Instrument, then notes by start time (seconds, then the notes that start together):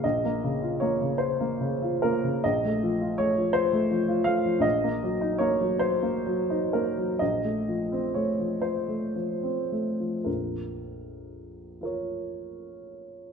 upright piano
0.04 A#1 D#5
0.25 A#3
0.44 C#3
0.62 F4
0.80 A#3 C#5
1.01 C#3
1.18 C5
1.41 A#3
1.61 C#3
1.82 F4
2.02 A#3 A#4
2.24 C#3
2.44 A#1 D#5
2.65 A3
2.83 F3
3.01 F4
3.18 A3 C#5
3.38 F3
3.53 C5
3.73 A3
3.91 F3
4.08 F4
4.24 A3 F5
4.45 F3
4.60 A#1 D#5
4.84 A#3
5.03 F#3
5.21 D#4
5.38 A#3 C#5
5.61 F#3
5.79 C5
6.03 A#3
6.27 F#3
6.50 D#4
6.73 A#3 A#4
6.98 F#3
7.19 A#1 D#5
7.44 A3
7.68 F3
7.92 C4
8.15 A3 C#5
8.39 F3
8.62 C5
8.88 A3
9.16 F3
9.43 C4
9.72 A3
10.00 F3
10.25 A#1 F2 A#4
11.81 F4 A#4
11.85 C#5